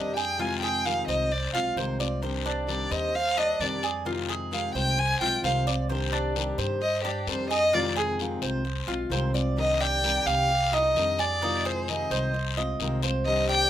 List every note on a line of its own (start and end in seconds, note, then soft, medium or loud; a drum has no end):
0.00 1.01 F2 medium
0.00 0.15 C3 medium
0.00 0.15 D#3 medium
0.00 0.15 G3 medium
0.00 0.15 D4 medium
0.00 0.14 G4 medium
0.00 0.16 D#5 medium
0.16 0.39 G3 soft
0.16 0.39 D4 soft
0.16 0.38 G4 medium
0.16 0.39 G#4 medium
0.16 0.42 G5 medium
0.16 short guiro medium
0.38 0.84 C3 medium
0.38 0.84 D#3 medium
0.38 0.84 G#3 medium
0.38 0.85 C4 medium
0.38 0.61 F4 medium
0.38 0.85 F4 medium
0.38 0.61 G#5 medium
0.38 long guiro medium
0.62 1.07 G#4 medium
0.62 0.87 G5 medium
0.85 1.30 C3 medium
0.85 1.30 D#3 medium
0.85 1.30 G#3 medium
0.85 1.31 C4 medium
0.85 1.31 F4 medium
0.85 1.07 F5 medium
0.85 short guiro medium
1.08 1.50 C2 medium
1.08 1.53 C5 medium
1.08 1.33 D#5 medium
1.08 short guiro medium
1.31 1.52 D5 medium
1.31 muted steel-string acoustic guitar stroke medium
1.31 long guiro medium
1.53 1.75 B1 medium
1.53 1.76 G#3 soft
1.53 1.76 C4 soft
1.53 1.75 F4 soft
1.53 1.76 F4 medium
1.53 1.67 F5 medium
1.76 2.85 C2 medium
1.76 1.99 C3 medium
1.76 1.99 D#3 medium
1.76 1.99 G#3 medium
1.76 1.99 C4 medium
1.76 1.98 F4 medium
1.76 1.99 C5 medium
1.76 short guiro medium
1.99 2.22 G#3 soft
1.99 2.22 C4 soft
1.99 2.21 F4 soft
1.99 2.22 D5 medium
1.99 short guiro medium
2.22 2.66 C3 medium
2.22 2.66 D#3 medium
2.22 2.67 G3 medium
2.22 2.68 D4 medium
2.22 2.68 G4 medium
2.22 2.45 C5 medium
2.22 long guiro medium
2.46 2.90 D4 medium
2.67 3.13 C3 medium
2.67 3.13 D#3 medium
2.67 3.13 G3 medium
2.67 3.14 D4 medium
2.67 3.14 G4 medium
2.67 2.93 D5 medium
2.67 short guiro medium
2.91 3.56 D#2 medium
2.91 3.36 C5 medium
2.91 3.17 D#5 medium
2.91 short guiro medium
3.14 3.39 F5 loud
3.14 muted steel-string acoustic guitar stroke medium
3.14 long guiro medium
3.37 3.60 G3 soft
3.37 3.82 D4 medium
3.37 3.60 D4 soft
3.37 3.59 G4 soft
3.37 3.62 D#5 loud
3.60 4.68 F2 medium
3.60 3.82 C3 medium
3.60 3.82 D#3 medium
3.60 3.83 G3 medium
3.60 3.83 D4 medium
3.60 3.81 G4 medium
3.60 3.83 D5 medium
3.60 short guiro medium
3.82 4.05 G3 soft
3.82 4.05 D4 soft
3.82 4.05 G4 medium
3.82 4.05 G#4 medium
3.82 short guiro medium
4.05 4.50 C3 medium
4.05 4.51 D#3 medium
4.05 4.51 G#3 medium
4.05 4.51 C4 medium
4.05 4.28 F4 medium
4.05 4.51 F4 medium
4.05 long guiro medium
4.29 4.73 G#4 medium
4.51 4.96 C3 medium
4.51 4.96 D#3 medium
4.51 4.97 G#3 medium
4.51 4.97 C4 medium
4.51 4.97 F4 medium
4.51 4.74 F5 medium
4.51 short guiro medium
4.74 5.17 C2 loud
4.74 5.19 C5 medium
4.74 5.00 G5 loud
4.74 short guiro medium
4.97 5.21 G#5 loud
4.97 muted steel-string acoustic guitar stroke medium
4.97 long guiro medium
5.20 5.42 B1 medium
5.20 5.43 G#3 soft
5.20 5.43 C4 soft
5.20 5.42 F4 medium
5.20 5.43 F4 medium
5.20 5.42 G5 medium
5.43 6.52 C2 loud
5.43 5.65 C3 medium
5.43 5.66 D#3 medium
5.43 5.66 G#3 medium
5.43 5.66 C4 medium
5.43 5.66 F4 medium
5.43 5.66 C5 medium
5.43 5.58 F5 medium
5.43 short guiro medium
5.67 5.90 G#3 soft
5.67 5.89 C4 soft
5.67 5.89 F4 medium
5.67 5.89 D5 medium
5.67 short guiro medium
5.89 6.34 C3 medium
5.89 6.34 D#3 medium
5.89 6.35 G3 medium
5.89 6.35 D4 medium
5.89 6.36 G4 medium
5.89 6.12 C5 medium
5.89 long guiro medium
6.12 6.57 D4 medium
6.36 6.80 C3 medium
6.36 6.80 D#3 medium
6.36 6.81 G3 medium
6.36 6.81 D4 medium
6.36 6.81 G4 medium
6.36 short guiro medium
6.58 7.23 G2 medium
6.58 7.03 C5 medium
6.58 short guiro medium
6.82 7.03 D#5 medium
6.82 muted steel-string acoustic guitar stroke medium
6.82 long guiro medium
7.04 7.28 G3 soft
7.04 7.49 D4 medium
7.04 7.27 D4 soft
7.04 7.30 G4 soft
7.04 7.26 G4 medium
7.27 8.36 F2 loud
7.27 7.49 C3 medium
7.27 7.50 D#3 medium
7.27 7.50 G3 medium
7.27 7.50 D4 medium
7.27 7.48 G4 medium
7.27 7.49 C5 medium
7.27 short guiro medium
7.50 7.73 G3 soft
7.50 7.73 D4 soft
7.50 7.72 G4 medium
7.50 7.73 G#4 medium
7.50 7.75 D#5 loud
7.50 short guiro medium
7.72 8.18 C3 medium
7.72 8.18 D#3 medium
7.72 8.19 G#3 medium
7.72 8.19 C4 medium
7.72 7.95 F4 medium
7.72 8.19 F4 medium
7.72 7.96 D5 medium
7.72 long guiro medium
7.96 8.41 G#4 medium
7.96 8.10 G#4 loud
8.19 8.63 C3 medium
8.19 8.64 D#3 medium
8.19 8.64 G#3 medium
8.19 8.64 C4 medium
8.19 8.65 F4 medium
8.19 short guiro medium
8.42 8.85 C2 loud
8.42 8.87 C5 medium
8.42 short guiro medium
8.64 muted steel-string acoustic guitar stroke medium
8.64 long guiro medium
8.87 9.09 B1 medium
8.87 9.10 G#3 soft
8.87 9.10 C4 soft
8.87 9.10 F4 soft
8.87 9.10 F4 medium
9.10 10.19 C2 loud
9.10 9.33 C3 medium
9.10 9.33 D#3 medium
9.10 9.33 G#3 medium
9.10 9.33 C4 medium
9.10 9.32 F4 medium
9.10 9.34 C5 medium
9.10 short guiro medium
9.33 9.57 G#3 soft
9.33 9.56 C4 soft
9.33 9.56 F4 soft
9.33 9.57 D5 medium
9.33 short guiro medium
9.56 10.01 C3 medium
9.56 10.02 D#3 medium
9.56 10.02 G3 medium
9.56 10.02 D4 medium
9.56 10.03 G4 medium
9.56 9.82 D#5 loud
9.56 long guiro medium
9.80 10.25 D5 medium
9.80 10.28 G5 loud
10.03 10.48 C3 medium
10.03 10.48 D#3 medium
10.03 10.49 G3 medium
10.03 10.49 D4 medium
10.03 10.49 G4 medium
10.03 short guiro medium
10.26 10.91 C2 medium
10.26 10.71 G4 medium
10.26 10.75 F5 loud
10.26 short guiro medium
10.50 muted steel-string acoustic guitar stroke medium
10.50 long guiro medium
10.72 10.95 G3 soft
10.72 10.95 D4 soft
10.72 11.17 D#4 medium
10.72 10.94 G4 medium
10.72 11.21 D#5 loud
10.95 12.04 F2 medium
10.95 11.18 C3 medium
10.95 11.18 D#3 medium
10.95 11.18 G3 medium
10.95 11.18 D4 medium
10.95 11.17 G4 medium
10.95 short guiro medium
11.18 11.42 G3 soft
11.18 11.41 D4 soft
11.18 11.40 G4 medium
11.18 11.41 G#4 medium
11.18 11.67 D5 loud
11.18 short guiro medium
11.42 11.87 C3 medium
11.42 11.87 D#3 medium
11.42 11.87 G#3 medium
11.42 11.88 C4 medium
11.42 11.64 D#4 medium
11.42 11.88 F4 medium
11.42 long guiro medium
11.65 12.10 G#4 medium
11.65 11.90 C5 medium
11.88 12.33 C3 medium
11.88 12.33 D#3 medium
11.88 12.34 G#3 medium
11.88 12.33 C4 medium
11.88 12.34 F4 medium
11.88 12.34 D#5 medium
11.88 short guiro medium
12.10 12.75 C2 medium
12.10 12.56 C5 medium
12.10 short guiro medium
12.34 muted steel-string acoustic guitar stroke medium
12.34 long guiro medium
12.57 12.80 G#3 soft
12.57 12.79 C4 medium
12.57 12.79 F4 medium
12.57 13.02 D#5 medium
12.79 13.70 C2 medium
12.79 13.02 C3 medium
12.79 13.02 D#3 medium
12.79 13.03 G#3 medium
12.79 13.03 C4 medium
12.79 13.02 F4 medium
12.79 short guiro medium
13.02 13.26 G#3 soft
13.02 13.26 C4 soft
13.02 13.25 F4 soft
13.02 13.48 C5 medium
13.02 short guiro medium
13.25 13.70 C3 medium
13.25 13.70 D#3 medium
13.25 13.70 G3 medium
13.25 13.70 D4 medium
13.25 13.70 G4 medium
13.25 13.47 D#5 loud
13.25 long guiro medium
13.49 13.70 D5 medium
13.49 13.70 G5 loud